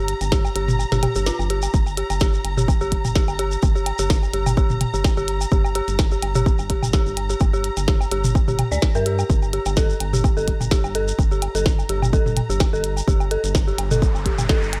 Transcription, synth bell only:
0.32 0.35 G4 medium
0.56 0.61 G4 medium
0.92 0.95 G4 medium
1.03 1.06 G4 medium
1.16 1.18 G4 medium
1.27 1.32 F4 medium
1.50 1.53 G4 medium
1.97 2.01 G4 medium
2.21 2.26 G4 medium
2.57 2.60 G4 medium
2.81 2.86 G4 medium
3.16 3.19 G4 medium
3.39 3.44 G4 loud
3.75 3.78 G4 medium
3.99 4.04 G4 medium
4.34 4.37 G4 medium
4.57 4.63 G4 loud
4.94 4.96 G4 medium
5.17 5.22 G4 loud
5.52 5.55 G4 medium
5.75 5.81 G4 loud
6.12 6.15 G4 medium
6.35 6.40 G4 loud
6.70 6.73 G4 medium
6.93 6.99 G4 loud
7.30 7.33 G4 medium
7.53 7.58 G4 loud
7.88 7.91 G4 medium
8.12 8.17 G4 loud
8.48 8.51 G4 medium
8.72 8.78 D5 medium
8.95 9.00 A#4 medium
9.06 9.11 G4 medium
9.53 9.57 G4 medium
9.77 9.85 A4 medium
10.13 10.16 G4 medium
10.37 10.44 A4 medium
10.71 10.75 G4 medium
10.95 11.03 A4 medium
11.32 11.34 G4 medium
11.55 11.62 A4 medium
11.90 11.93 G4 medium
12.13 12.21 A4 medium
12.50 12.52 G4 medium
12.73 12.80 A4 medium
13.08 13.11 G4 medium
13.31 13.39 A4 medium
13.68 13.70 G4 medium
13.91 13.98 A4 medium
14.26 14.29 G4 medium
14.49 14.57 A4 medium

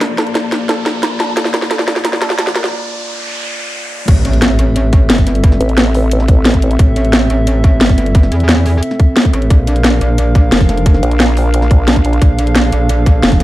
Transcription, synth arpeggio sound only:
0.01 0.17 A#4 medium
0.18 0.29 A4 loud
0.35 0.46 A4 medium
0.52 0.68 A#4 medium
0.69 0.80 A4 loud
0.86 0.97 A4 medium
1.03 1.19 A#4 medium
1.20 1.30 A4 loud
1.37 1.47 A4 medium
1.54 1.70 A#4 medium
1.71 1.81 A4 medium
1.88 1.98 A4 medium
2.05 2.20 A#4 medium
2.22 2.32 A4 loud
2.39 2.49 A4 medium
2.55 2.71 A#4 medium

